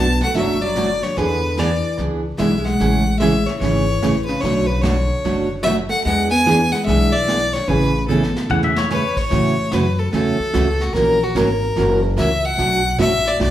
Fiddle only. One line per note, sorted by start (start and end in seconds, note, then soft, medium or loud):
0.00 0.21 A5 loud
0.23 0.35 F#5 medium
0.37 0.63 E5 loud
0.62 1.05 D5 medium
1.03 1.19 C#5 medium
1.17 1.61 B4 loud
1.59 1.99 D5 medium
2.38 2.57 E5 medium
2.57 2.66 E5 medium
2.64 3.19 F#5 medium
3.19 3.48 E5 medium
3.46 3.59 C#5 medium
3.59 4.23 C#5 medium
4.26 4.42 B4 medium
4.41 4.68 C#5 medium
4.67 4.83 B4 medium
4.82 5.50 C#5 medium
5.63 5.76 E5 loud
5.90 6.03 F#5 loud
6.04 6.29 F#5 loud
6.30 6.73 G#5 loud
6.72 6.85 F#5 medium
6.86 7.14 E5 loud
7.12 7.54 D5 loud
7.53 7.70 C#5 medium
7.68 8.08 B4 loud
8.08 8.47 A4 medium
8.92 9.20 B4 medium
9.18 9.75 C#5 medium
9.73 10.00 B4 medium
9.99 10.12 A4 medium
10.13 10.83 A4 medium
10.81 10.95 F#4 medium
10.94 11.25 A#4 medium
11.23 11.38 F#4 medium
11.37 12.04 A#4 medium
12.18 12.46 E5 medium
12.45 13.00 F#5 loud
13.01 13.29 E5 loud
13.28 13.41 D5 medium
13.43 13.51 D5 medium